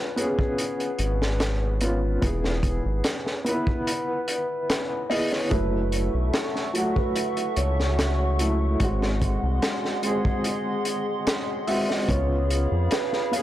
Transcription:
Already playing: B3 C#4 F4 B4
0.16 B3 C#4 G#4, closed hi-hat
0.20 G#4
0.39 kick
0.58 closed hi-hat
0.80 closed hi-hat
0.99 G#1, closed hi-hat
1.22 snare
1.40 snare, closed hi-hat
1.81 B3 C#4 F4, closed hi-hat
2.22 E1 B3 E4, kick, closed hi-hat
2.26 G#4
2.44 snare
2.63 kick, closed hi-hat
2.86 G#1
3.04 snare, closed hi-hat
3.26 snare
3.44 B3 E4, closed hi-hat
3.49 B4
3.67 kick
3.87 closed hi-hat
4.28 closed hi-hat
4.70 snare, closed hi-hat
5.10 B3 E4 G#4 D#5, open hi-hat
5.32 C#5, snare
5.50 F#1 F#3 A3 A4 B4 E5 F#5 C#6, kick, closed hi-hat
5.54 E4
5.92 closed hi-hat
6.14 B1
6.33 A4, snare, closed hi-hat
6.56 snare
6.73 F#3 A3, closed hi-hat
6.78 F#4
6.96 B4, kick
7.16 closed hi-hat
7.37 closed hi-hat
7.56 C#2 C#5, closed hi-hat
7.80 snare
7.99 snare, closed hi-hat
8.39 F#3 A3 E4, closed hi-hat
8.80 G#1 G#3 C4 F#4 G#4 D#5 C6, kick, closed hi-hat
9.02 snare
9.22 kick, closed hi-hat
9.43 C2
9.62 snare, closed hi-hat
9.85 snare
10.02 G#3 C4, closed hi-hat
10.06 G#4
10.25 kick
10.44 closed hi-hat
10.85 closed hi-hat
11.27 snare, closed hi-hat
11.67 G#3 C4 F#4 E5, open hi-hat
11.89 D#5, snare
12.08 C#2 B3 C#4 C#5 F5 B5, kick, closed hi-hat
12.12 F4
12.50 closed hi-hat
12.72 F2
12.91 B4, snare, closed hi-hat
13.13 snare
13.31 B3 C#4 G#4 F5, closed hi-hat

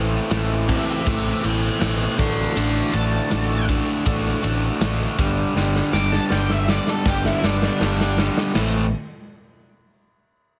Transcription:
Already playing: A1 A2 E3 A3 C4 E4
0.30 A1 A2 E3 A3 C4 E4, snare, ride
0.68 A2 E3 A3 C4 E4 C5 E5, kick, ride
1.06 A1 A2 E3 A3 C4 E4 C5 E5, kick, ride
1.43 A1 A2 E3 A3 C4 E4 E5 G5, ride
1.81 A1 A2 E3 A3 C4 E4 E5 G5, snare, ride
2.18 A1 A2 D3 F#3 A3 D4 F#4 A5 C6, kick, ride
2.55 A1 A2 D3 A3 D4 F#4 A5 C6, ride
2.92 A1 A2 D3 A3 D4 F#4 A5, ride
3.30 A1 A2 D3 A3 D4 F#4, snare, ride
3.67 A2 D3 A3 D4 F#4, kick, ride
4.06 A1 A2 D3 A3 D4 F#4, kick, ride
4.26 snare
4.43 A1 A2 D3 A3 D4 F#4, ride
4.81 A1 A2 D3 A3 D4 F#4, snare, ride
5.18 G1 G2 D3 G3 B3 D4 G4, kick, ride
5.55 G1 G2 D3 G3 B3 D4 G4, snare
5.75 snare
5.92 G1 G2 D3 G3 B3 D4 G4 D6, snare
6.12 A5, snare
6.30 G1 G2 D3 G3 B3 D4 G4 G5, snare
6.50 E5, snare
6.67 G2 D3 G3 B3 D4 G4 D5, snare
6.87 A4, snare
7.05 G1 G2 D3 G3 B3 D4 G4, kick, snare
7.25 E4, snare
7.43 G1 G2 D3 G3 B3 D4 G4, snare
7.62 snare
7.80 G1 G2 D3 G3 B3 D4 G4, snare
8.00 snare
8.18 G2 D3 G3 B3 D4 G4, snare
8.37 snare
8.55 A1 A2 E3 A3 C4 E4, snare, crash

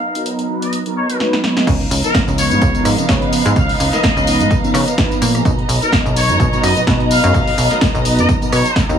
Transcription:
Already playing: B3 D#4 F5 A#5
0.02 shaker
0.14 F#3 B3 D#4 A#4, closed hi-hat
0.26 closed hi-hat
0.39 closed hi-hat
0.49 F#3 B3 D#4 B4, shaker
0.62 D#5, closed hi-hat
0.73 closed hi-hat
0.85 F#3 B3 D#4 A#4, closed hi-hat
0.96 C#5, shaker
1.09 F#3 B3 D#4 B4, closed hi-hat
1.20 F#3 B3 D#4 B4, snare
1.33 snare
1.44 snare
1.56 F#3 B3 D#4 G#4, snare
1.67 C#2 F3 B3 D#4 A#4 F5 A#5, kick, closed hi-hat, crash, tambourine
1.81 closed hi-hat
1.91 C#2, open hi-hat, tambourine
2.03 F3 B3 D#4 A#4, closed hi-hat, tambourine
2.14 kick, snare, closed hi-hat, tambourine
2.27 C#2, closed hi-hat, tambourine
2.38 F3 B3 D#4 B4 C#5, open hi-hat, tambourine
2.51 G#2, closed hi-hat, tambourine
2.62 C#2, kick, closed hi-hat, tambourine
2.74 F3 B3 D#4 A#4, closed hi-hat, tambourine
2.85 G#2, cross-stick, open hi-hat, tambourine
2.98 C#3 F3 B3 D#4 B4, closed hi-hat, tambourine
3.08 C#3 F3 B3 D#4 B4, kick, snare, closed hi-hat, tambourine
3.22 closed hi-hat
3.33 open hi-hat, tambourine
3.45 G#2 F3 B3 D#4 G#4, closed hi-hat, tambourine
3.56 C#2 F3 B3 D#4 A#4 F5, kick, closed hi-hat, tambourine
3.69 open hi-hat
3.80 C#2, open hi-hat, tambourine
3.92 F3 B3 D#4 A#4 D#5, snare, closed hi-hat, tambourine
4.03 kick, snare, closed hi-hat, tambourine
4.16 C#2, closed hi-hat, tambourine
4.26 F3 B3 D#4 B4, open hi-hat, tambourine
4.40 G#2, closed hi-hat, tambourine
4.51 kick, closed hi-hat, tambourine
4.63 C#3 F3 B3 D#4 A#4, closed hi-hat, tambourine
4.74 C#3, cross-stick, open hi-hat, tambourine
4.87 F3 B3 D#4 B4, closed hi-hat, tambourine
4.97 F3 B3 D#4 B4, kick, snare, closed hi-hat, tambourine
5.11 closed hi-hat, tambourine
5.22 A#2, open hi-hat, tambourine
5.34 F3 B3 D#4 G#4, cross-stick, closed hi-hat, tambourine
5.45 B1 F#3 B3 D#4 A#4 D#5, kick, closed hi-hat, tambourine
5.59 closed hi-hat
5.69 B1, open hi-hat, tambourine
5.82 F#3 B3 D#4 A#4, closed hi-hat, tambourine
5.92 kick, snare, closed hi-hat, tambourine
6.06 B1, closed hi-hat, tambourine
6.16 F#3 B3 D#4 B4 C#5, open hi-hat, tambourine
6.29 F#2, closed hi-hat, tambourine
6.40 B1, kick, closed hi-hat, tambourine
6.52 F#3 B3 D#4 A#4, closed hi-hat, tambourine
6.63 F#2 D#5, cross-stick, open hi-hat, tambourine
6.76 B2 F#3 B3 D#4 B4, closed hi-hat, tambourine
6.87 B2 F#3 B3 D#4 B4, kick, snare, closed hi-hat, tambourine
7.00 closed hi-hat
7.11 F5, open hi-hat, tambourine
7.23 F#2 F#3 B3 D#4 G#4, closed hi-hat, tambourine
7.34 B1 F#3 B3 D#4 A#4, kick, closed hi-hat, tambourine
7.47 open hi-hat
7.58 B1, open hi-hat, tambourine
7.71 F#3 B3 D#4 A#4, snare, closed hi-hat, tambourine
7.81 kick, snare, closed hi-hat, tambourine
7.95 B1, closed hi-hat, tambourine
8.05 F#3 B3 D#4 B4, open hi-hat, tambourine
8.18 F#2 D#5, closed hi-hat, tambourine
8.29 kick, closed hi-hat, tambourine
8.41 B2 F#3 B3 D#4 A#4, closed hi-hat, tambourine
8.52 B2 F#3 B3 D#4 G#4 C#5, cross-stick, open hi-hat, tambourine
8.65 closed hi-hat, tambourine
8.76 D#2, kick, snare, closed hi-hat, tambourine
8.88 D#2 F#3 B3 D#4 A#4, closed hi-hat, tambourine

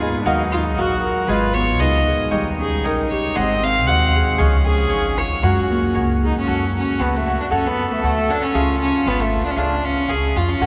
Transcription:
Already playing: G#3 B3 D#4 F4 F#4 G#4
0.00 G#4 B4 D#5 G#5
0.20 D4
0.26 D#2 F#3 D#4 F#4 A#4 D#5 F5
0.52 D#4 F4
0.77 A#1 F4 F#4 A#4 D#5 F5
0.81 F#4
1.03 F#4 A#4
1.28 G#1 G#3 F4 G#4 B4 D#5 G#5
1.54 B3 C#5
1.80 C#2 D#4 G#4 B4 D#5 G#5
2.08 G#4
2.31 D#2 G3 D#4 C#5 D#5 G5 A#5
2.59 C#4 G#4
2.84 A#1 D#4 A#4 C#5 D#5 G5 A#5
3.12 G4 C#5
3.35 G#1 G#3 C4 G#4 C5 D#5 F#5
3.63 C4 F5
3.87 D#2 F#4 G#4 C5 D#5 F#5
4.16 G#4
4.38 C#2 F3 C#4 G#4 C#5 D#5 F5
4.65 C#4 G#4
4.89 D#4 G#4 C#5 D#5 F5
4.93 G#1
5.18 F4 C#5
5.43 F#2 G#3 C#4 F#4 A#4 C#5 F#5 G#5
5.70 A#3
5.94 C#2 F#4 A#4 C#5 F#5 G#5
6.24 D#4 G#4
6.38 C#4
6.42 F4
6.47 F#2 F#4 A4 C#5 F#5
6.78 C#4
6.99 C#2 B3 F#4 A4 C#5 F#5
7.16 A3
7.26 F#4 A4 C#5 F#5
7.41 D4
7.51 F#2 C#4 F#4 A4 C#5 F#5
7.67 B3
7.89 A3 B3
8.03 D2 A3 F#4 A4 C#5 F#5
8.28 D4 F#4 A4 C#5 F#5
8.42 C#4
8.54 C#2 F4 G#4 C#5 F5
8.82 C#4
9.05 G#1 B3 F4 G#4 C#5 F5
9.20 A3
9.45 D4
9.51 C#4
9.56 C#2 D4 F4 G#4 C#5 F5
9.85 C#4
10.08 C#2 F4 G#4 C#5 F5
10.35 F2 F4 G#4 C#5 F5
10.49 C#4
10.56 F4
10.61 F#2 F#4 A4 C#5 F#5

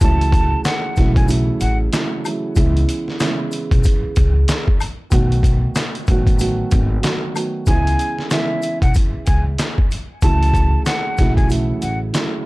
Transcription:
0.01 C#2 C#3 E3 F#3 A3 E4 A5, kick, closed hi-hat, maracas
0.21 closed hi-hat
0.33 kick, closed hi-hat, maracas
0.65 F#5, snare, clap, closed hi-hat, maracas
0.96 B1 C#3 E3 F#3 A3 E4, kick, snare, closed hi-hat, maracas
1.15 G#5, kick, closed hi-hat
1.27 C#3 E3 F#3 A3 E4, closed hi-hat, maracas
1.61 A1 F#5, closed hi-hat, maracas
1.92 C#3 E3 F#3 A3 E4, snare, clap, closed hi-hat, maracas
2.25 C#3 E3 F#3 A3 E4, closed hi-hat, high woodblock, maracas
2.55 C#2 C#3 E3 G#3 B3 E4, kick, closed hi-hat, maracas
2.77 closed hi-hat
2.89 closed hi-hat, maracas
3.08 snare
3.20 C#3 E3 G#3 B3 E4, snare, clap, closed hi-hat, maracas
3.52 closed hi-hat, maracas
3.71 B1, kick, closed hi-hat
3.84 kick, closed hi-hat, maracas
4.03 muted upright bass stroke
4.16 C#2, kick, closed hi-hat, maracas
4.48 snare, clap, closed hi-hat, maracas
4.68 kick
4.80 closed hi-hat, high woodblock, maracas
5.10 B1 D#3 F#3 A3 B3 F#4, kick, closed hi-hat, maracas
5.32 closed hi-hat
5.43 kick, closed hi-hat, maracas
5.75 snare, clap, closed hi-hat, maracas
5.95 closed hi-hat
6.07 A1 D#3 F#3 A3 B3 F#4, kick, closed hi-hat, maracas
6.27 kick, closed hi-hat
6.38 D#3 F#3 A3 B3 F#4, closed hi-hat, maracas
6.71 G#1, kick, closed hi-hat, maracas
7.00 D#3 F#3 A3 B3 F#4, closed hi-hat
7.04 snare, clap, maracas
7.33 D#3 F#3 A3 B3 F#4, closed hi-hat, high woodblock, maracas
7.66 C#2 C#3 E3 G#3 B3 E4 G#5, kick, closed hi-hat, maracas
7.87 closed hi-hat
7.99 closed hi-hat, maracas
8.19 snare
8.30 C#3 E3 G#3 B3 E4 E5, snare, clap, closed hi-hat, maracas
8.62 closed hi-hat, maracas
8.81 B1 F#5, kick, closed hi-hat
8.94 kick, closed hi-hat, maracas
9.14 muted upright bass stroke
9.26 C#2 G#5, kick, closed hi-hat, maracas
9.58 snare, clap, closed hi-hat, maracas
9.78 kick
9.91 closed hi-hat, maracas
10.22 C#2 C#3 E3 F#3 A3 E4 A5, kick, closed hi-hat, maracas
10.43 closed hi-hat
10.54 kick, closed hi-hat, maracas
10.86 F#5, snare, clap, closed hi-hat, maracas
11.17 B1 C#3 E3 F#3 A3 E4, kick, snare, closed hi-hat, maracas
11.36 G#5, kick, closed hi-hat
11.48 C#3 E3 F#3 A3 E4, closed hi-hat, maracas
11.82 A1 F#5, closed hi-hat, maracas
12.13 C#3 E3 F#3 A3 E4, snare, clap, closed hi-hat, maracas

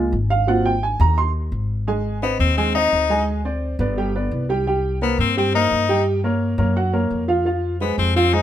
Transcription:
Already playing: G#3 A#3 F4
0.12 G#1
0.30 F5
0.47 F#3 A#3 C4 F4 F#5
0.66 G5
0.83 G#5
1.00 D#2 A#5
1.18 C6
1.52 G#1
1.87 G#3 G#4 G#5
2.22 B3 C4 C5 D#5
2.39 D#2 C4
2.57 G#3 C4 G#4 G#5
2.75 C4 D#4 C5 D#5
2.92 D2
3.10 G#3 G#4 G#5
3.45 C4 C5 D5
3.79 G1 B3 B4 D5
3.97 G3 G4 G5
4.15 B3 B4 D5
4.31 C2
4.49 G3 G4 G5
4.67 G3 G4 G5
5.02 A#3 B3 A#4 C5
5.18 G2 C4
5.37 G3 C4 G4 G5
5.54 A#3 D#4 A#4 C5
5.71 G2
5.89 G3 G4 G5
6.24 A#3 A#4 C#5
6.58 F#2 A#3 A#4 C#5
6.76 F#3 F#4 F#5
6.93 A#3 A#4 C#5
7.10 F2
7.28 F3 F4 F5
7.45 F3 F4 F5
7.81 G#3 B3 G#4 C5
7.98 F2 C4
8.16 F3 C4 F4 F5
8.33 G#3 D#4 G#4 C5

